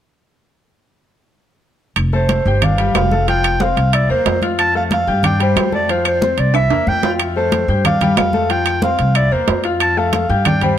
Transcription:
1.96 upright bass F1, high conga, high timbale, claves
2.13 grand piano A3 A4 A5, clarinet C5, high conga
2.29 high conga, high timbale, low timbale
2.46 upright bass G1, grand piano G4 G5 G6, high conga
2.62 grand piano D4 D5 D6, clarinet F5, high conga, low conga, high timbale, claves
2.78 grand piano G3 G4 G5, high conga, high timbale
2.95 upright bass F1, clarinet F5, high conga, high timbale, low timbale, claves
3.11 grand piano A3 A4 A5, high conga
3.27 grand piano F3 F4 F5, clarinet G5, high conga, high timbale
3.44 high conga, high timbale, claves
3.60 grand piano C4 C5 C6, clarinet F5, high conga, low timbale
3.77 upright bass C2, high conga, high timbale
3.93 grand piano E4 E5 E6, clarinet D5, high conga, high timbale, claves
4.09 upright bass E2, grand piano A#3 A#4 A#5, clarinet C5, high conga
4.26 upright bass F2, high conga, high timbale, low timbale
4.42 grand piano F4 F5 F6, high conga, high timbale
4.58 clarinet A5, high conga, high timbale, claves
4.75 grand piano A3 A4 A5, clarinet F5, high conga
4.91 clarinet F5, high conga, high timbale, low timbale
5.07 upright bass G2, grand piano G4 G5 G6, high conga
5.23 grand piano D4 D5 D6, clarinet G5, high conga, low conga, high timbale, claves
5.40 grand piano G3 G4 G5, clarinet C5, high conga, high timbale
5.56 upright bass F2, high conga, high timbale, low timbale, claves
5.72 grand piano A3 A4 A5, clarinet D5, high conga
5.89 grand piano F3 F4 F5, clarinet C5, high conga, high timbale
6.05 clarinet C5, high conga, high timbale, claves
6.21 grand piano C4 C5 C6, high conga, low timbale
6.38 upright bass C2, clarinet D5, high conga, high timbale
6.54 grand piano E4 E5 E6, clarinet E5, high conga, high timbale, claves
6.70 upright bass E2, grand piano A#3 A#4 A#5, high conga, high timbale
6.87 upright bass F2, clarinet G5, high conga
7.03 grand piano F4 F5 F6, high conga, low timbale
7.19 high conga, high timbale, claves
7.36 grand piano A3 A4 A5, clarinet C5, high conga
7.52 high conga, high timbale, low timbale
7.68 upright bass G2, grand piano G4 G5 G6, high conga
7.85 grand piano D4 D5 D6, clarinet F5, high conga, low conga, high timbale, claves
8.01 grand piano G3 G4 G5, high conga, low conga, high timbale
8.17 upright bass F2, clarinet F5, high conga, high timbale, low timbale, claves
8.33 grand piano A3 A4 A5, high conga
8.49 grand piano F3 F4 F5, clarinet G5, high conga, high timbale
8.66 high conga, high timbale, claves
8.82 grand piano C4 C5 C6, clarinet F5, high conga, low timbale
8.99 upright bass C2, high conga, high timbale
9.15 grand piano E4 E5 E6, clarinet D5, high conga, high timbale, claves
9.32 upright bass E2, grand piano A#3 A#4 A#5, clarinet C5, high conga
9.48 upright bass F2, high conga, high timbale, low timbale
9.64 grand piano F4 F5 F6, high timbale
9.80 clarinet A5, high conga, high timbale, claves
9.97 grand piano A3 A4 A5, clarinet F5, high conga
10.13 clarinet F5, high conga, high timbale, low timbale
10.29 upright bass G2, grand piano G4 G5 G6, high conga
10.45 grand piano D4 D5 D6, clarinet G5, high conga, low conga, high timbale, claves
10.61 grand piano G3 G4 G5, clarinet C5, high conga, low conga, high timbale

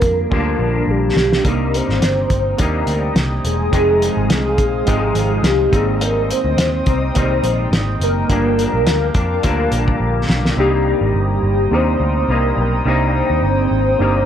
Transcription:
Already playing: clean electric guitar G2 D3 F3 A#3 D4, reed electric piano A#3 D4 F4 G4, soft synth lead A#4
0.02 picked electric bass F2, kick, closed hi-hat
0.30 picked electric bass D2, clean electric guitar G2 D3 F3 A#3 D4, reed electric piano A#3 D4 F4 G4, kick
0.59 picked electric bass A#1
0.88 picked electric bass A#1, soft synth lead G4
1.16 picked electric bass B1, snare
1.33 snare
1.44 picked electric bass C2, clean electric guitar C3 G3 A#3 D#4, reed electric piano A#3 D4 D#4 G4, soft synth lead A#4, ambient pad C5 G5 A#5 D#6, kick, closed hi-hat
1.74 soft synth lead C5, closed hi-hat
1.89 picked electric bass G#1, snare
2.01 picked electric bass G1, snare, closed hi-hat
2.30 picked electric bass G1, kick, closed hi-hat
2.58 picked electric bass D#2, clean electric guitar C3 G3 A#3, reed electric piano A#3 D4 D#4 G4, soft synth lead A#4, kick, closed hi-hat
2.62 clean electric guitar D#4
2.87 picked electric bass D2, closed hi-hat
3.16 picked electric bass C2, snare, closed hi-hat
3.45 picked electric bass E1, soft synth lead G#4, closed hi-hat
3.71 picked electric bass F1, clean electric guitar F2 C3 D#3 G#3, reed electric piano G#3 C4 D#4 G5, ambient pad D#5 F5, kick, closed hi-hat
3.76 clean electric guitar D#4
4.02 closed hi-hat
4.17 picked electric bass G#1
4.29 picked electric bass C2, snare, closed hi-hat
4.58 picked electric bass A#1, kick, closed hi-hat
4.85 picked electric bass G#1, clean electric guitar F2 C3 D#3 G#3 D#4, reed electric piano G#3 C4 D#4 G5, kick, closed hi-hat
5.15 picked electric bass G#1, closed hi-hat
5.43 picked electric bass C2, soft synth lead G4, snare, closed hi-hat
5.72 picked electric bass G#1, clean electric guitar G3 C4 D#4, reed electric piano A#3 C4 D#4 G4, soft synth lead G#4, ambient pad G5 D#6, kick, closed hi-hat
5.76 clean electric guitar G#2 D#3
6.01 soft synth lead A#4, closed hi-hat
6.31 soft synth lead C5, closed hi-hat
6.44 picked electric bass D2
6.57 picked electric bass D#2, snare, closed hi-hat
6.86 picked electric bass C2, clean electric guitar G3 C4 D#4, kick, closed hi-hat
7.14 picked electric bass C2, clean electric guitar G#2 D#3 G3 C4, reed electric piano A#3 C4 D#4 G4, soft synth lead C5, kick, closed hi-hat
7.19 clean electric guitar D#4
7.43 picked electric bass A#1, closed hi-hat
7.72 picked electric bass G#1, snare, closed hi-hat
8.00 picked electric bass F#1, soft synth lead A#4, closed hi-hat
8.29 picked electric bass G1, clean electric guitar G2 D3 F3 A#3 D4, reed electric piano A3 D4 F4 G4, ambient pad A#4 F5 D6, kick, closed hi-hat
8.35 reed electric piano A#3
8.59 closed hi-hat
8.74 picked electric bass A#1
8.86 picked electric bass D2, snare, closed hi-hat
9.14 picked electric bass F2, clean electric guitar F3 A#3 D4, kick, closed hi-hat
9.42 picked electric bass D2, clean electric guitar G2 D3 F3 A#3 D4, reed electric piano A#3 D4 F4 G4, kick, closed hi-hat
9.72 picked electric bass A#1, closed hi-hat
9.88 kick
10.00 picked electric bass A#1
10.29 picked electric bass B1, snare
10.45 snare
10.56 picked electric bass C2, clean electric guitar C3 G3 A#3, reed electric piano A#3 D4 D#4 G4, soft synth lead G4, ambient pad C5 G5 A#5 D#6
10.61 clean electric guitar D#4
10.87 soft synth lead G4
11.01 picked electric bass G#1
11.14 picked electric bass G1
11.43 picked electric bass G1
11.71 picked electric bass D#2, clean electric guitar C3 G3 A#3 D#4, reed electric piano A#3 D4 D#4 G4, soft synth lead C5
12.00 picked electric bass D2
12.29 picked electric bass C2, clean electric guitar C3 G3 A#3 D#4, soft synth lead A#4
12.57 picked electric bass B1, soft synth lead A#4
12.85 picked electric bass C2, clean electric guitar C3 G3 A#3 D#4, reed electric piano A#3 D4 D#4 G4, soft synth lead C5
13.30 picked electric bass D#2
13.43 picked electric bass G1
13.71 picked electric bass G#1
13.99 picked electric bass G1, clean electric guitar C3 G3 A#3 D#4, reed electric piano A#3 D4 D#4 G4

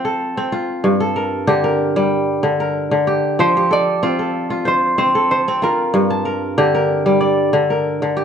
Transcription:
Already playing: kora F3 C4 F4 C5
0.05 kora A4
0.37 kora C4
0.52 kora F4
0.84 kora G2
1.00 kora A4
1.16 kora A#4
1.47 kora D3 G4
1.64 kora A#4
1.96 kora G3
2.43 kora D3
2.60 kora A#4
2.91 kora D3
3.07 kora G4
3.39 kora F3, harp C5
3.57 kora G4
3.71 kora A4, harp D5
4.03 kora C4 F4
4.19 kora A4
4.50 kora F4
4.65 kora C5, harp C5
4.98 kora C4, harp C5
5.15 kora A4
5.31 harp C5
5.48 kora C4
5.62 kora F4, harp A#4
5.94 kora G2
6.10 kora A5
6.25 kora A#4
6.58 kora D3 G4
6.75 kora A#4
7.06 kora G3
7.21 kora D5
7.53 kora D3
7.70 kora A#4
8.02 kora D3
8.17 kora G4

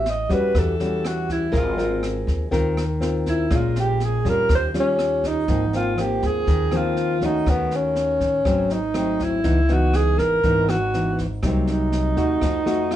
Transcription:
Already playing: upright bass A1, nylon-string guitar A2, alto saxophone E5
0.06 alto saxophone D#5, snare
0.30 upright bass E2, nylon-string guitar G3 C#4 F#4, alto saxophone B4, kick, snare
0.55 upright bass E2, nylon-string guitar E3, alto saxophone A4, kick, cross-stick, snare
0.80 nylon-string guitar G3 C#4 F#4, snare
1.05 alto saxophone F#4, cross-stick, snare
1.29 alto saxophone E4, kick, snare
1.52 upright bass G#1, nylon-string guitar G#3 C4 F4 A#4, kick, snare
1.57 alto saxophone F4
1.77 nylon-string guitar C4 F4 A#4, snare
2.03 cross-stick, snare
2.27 upright bass D#2, kick, snare
2.51 upright bass D#2, nylon-string guitar D#3 C4 F4 A#4, kick, snare
2.77 cross-stick, snare
3.01 nylon-string guitar C4 F4 A#4, snare
3.26 alto saxophone E4, kick, snare
3.51 upright bass A#1, nylon-string guitar A#2 G#3 C#4 F4, kick, cross-stick, snare
3.55 alto saxophone F4
3.76 alto saxophone G4, snare
4.00 snare
4.05 alto saxophone G#4
4.25 upright bass F2, nylon-string guitar G3 C#4 F4, kick, snare
4.29 alto saxophone A#4
4.49 upright bass D#2, nylon-string guitar D#3, kick, cross-stick, snare
4.55 alto saxophone C5
4.74 nylon-string guitar G3 C#4 F4, snare
4.80 alto saxophone C#4
4.99 cross-stick, snare
5.24 alto saxophone D#4, kick, snare
5.48 upright bass G#1, nylon-string guitar G#2 F3 A#3 C4, kick, snare
5.73 nylon-string guitar F3 A#3 C4, alto saxophone F4, snare
5.98 nylon-string guitar F3 A#3 C4, alto saxophone G4, cross-stick, snare
6.22 upright bass D#2, alto saxophone G#4, kick, snare
6.47 upright bass D#2, nylon-string guitar D#3, kick, snare
6.71 nylon-string guitar F3 A#3 C4, cross-stick, snare
6.77 alto saxophone F4
6.97 snare
7.21 nylon-string guitar A3 C#4 F#4, alto saxophone D#4, kick, snare
7.46 upright bass D#2, nylon-string guitar D#3, alto saxophone B3, kick, cross-stick, snare
7.71 snare
7.75 alto saxophone C#4
7.96 snare
8.20 upright bass A2, kick, snare
8.45 upright bass G#1, nylon-string guitar G#2 F#3 A3 C4, kick, cross-stick, snare
8.70 alto saxophone D#4, snare
8.94 nylon-string guitar F#3 A3 C4, cross-stick, snare
9.20 alto saxophone E4, kick, snare
9.44 upright bass C#2, nylon-string guitar C#3 E3 B3 D#4, kick, snare
9.69 nylon-string guitar E3 B3 D#4, alto saxophone F#4, snare
9.94 alto saxophone G#4, cross-stick, snare
10.18 upright bass G#1, alto saxophone A#4, kick, snare
10.44 upright bass G#1, nylon-string guitar G#2 E3 B3 D#4, kick, snare
10.69 alto saxophone F#4, cross-stick, snare
10.94 nylon-string guitar E3 B3 D#4, snare
11.18 kick, snare
11.43 upright bass C2, nylon-string guitar C3 F#3 A#3 D#4, kick, cross-stick, snare
11.47 alto saxophone C4
11.67 alto saxophone D#4, snare
11.92 snare
12.16 upright bass D#2, nylon-string guitar A3 D#4 F#4, kick, snare
12.41 upright bass F2, nylon-string guitar F3, kick, cross-stick, snare
12.66 nylon-string guitar A3 D#4 F#4, snare
12.91 cross-stick, snare

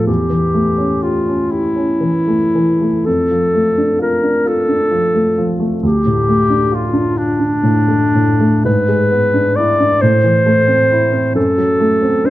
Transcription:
Already playing: grand piano A2 F3 D4 A4
0.07 grand piano E2, clarinet G4
0.30 grand piano E3
0.54 grand piano A3
0.78 grand piano C#4
1.03 clarinet F4, grand piano G4
1.27 grand piano C#4
1.51 clarinet E4, grand piano G4
1.76 grand piano C#4
2.01 grand piano E3
2.28 grand piano A3
2.55 grand piano E3
2.81 grand piano A3
3.06 grand piano F2, clarinet A4
3.31 grand piano F3
3.55 grand piano A3
3.78 grand piano D4
3.99 grand piano F4, clarinet A#4
4.23 grand piano D4
4.45 grand piano F4, clarinet A4
4.68 grand piano D4
4.91 grand piano F3
5.15 grand piano A3
5.38 grand piano F3
5.60 grand piano A3
5.83 grand piano D2, clarinet G4
6.06 grand piano A2
6.29 grand piano A3
6.50 grand piano D4
6.72 grand piano F4, clarinet F4
6.93 grand piano D4
7.16 clarinet D4, grand piano F4
7.39 grand piano D4
7.63 grand piano A2
7.88 grand piano A3
8.15 grand piano A2
8.41 grand piano A3
8.64 grand piano G#2, clarinet B4
8.88 grand piano G#3
9.11 grand piano B3
9.34 grand piano D4
9.56 grand piano E4, clarinet D5
9.80 grand piano D4
10.01 grand piano A2, clarinet C5
10.24 grand piano E3
10.46 grand piano A3
10.67 grand piano C4
10.92 grand piano E4
11.12 grand piano C4
11.35 grand piano F#2, clarinet A4
11.58 grand piano F#3
11.80 grand piano A3
12.02 grand piano C4
12.24 grand piano D4, clarinet C5

